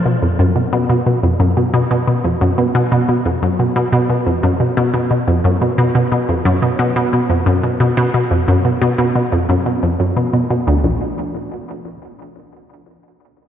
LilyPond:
\new Staff \with { instrumentName = "Synth arpeggio sound" } { \clef bass \time 4/4 \key ces \lydian \tempo 4 = 89 b,16 f,16 fis,16 b,16 b,16 b,16 b,16 f,16 fis,16 b,16 b,16 b,16 b,16 f,16 fis,16 b,16 | b,16 b,16 b,16 f,16 fis,16 b,16 b,16 b,16 b,16 f,16 fis,16 b,16 b,16 b,16 b,16 f,16 | fis,16 b,16 b,16 b,16 b,16 f,16 fis,16 b,16 b,16 b,16 b,16 f,16 fis,16 b,16 b,16 b,16 | b,16 f,16 fis,16 b,16 b,16 b,16 b,16 f,16 fis,16 b,16 f,16 fis,16 b,16 b,16 b,16 d,16 |
bes,,8 r2. r8 | }